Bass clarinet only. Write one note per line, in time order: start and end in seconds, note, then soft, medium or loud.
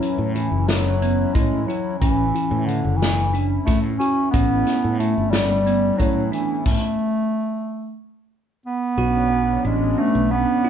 0.00 0.34 F#3 medium
0.34 0.69 E3 medium
0.67 1.35 F#3 medium
1.34 1.67 G#3 medium
1.66 1.98 F#3 medium
1.99 2.67 E3 medium
2.65 2.99 D3 medium
2.97 3.38 E3 medium
3.64 3.80 A3 medium
3.99 4.30 C#4 medium
4.31 4.94 B3 medium
4.99 5.32 A3 medium
5.31 5.99 G3 loud
5.97 6.32 F#3 medium
6.32 6.63 E3 medium
6.66 7.95 A3 medium
8.66 9.61 B3 loud
9.65 10.01 G#3 medium
9.99 10.32 A3 loud
10.31 10.70 B3 medium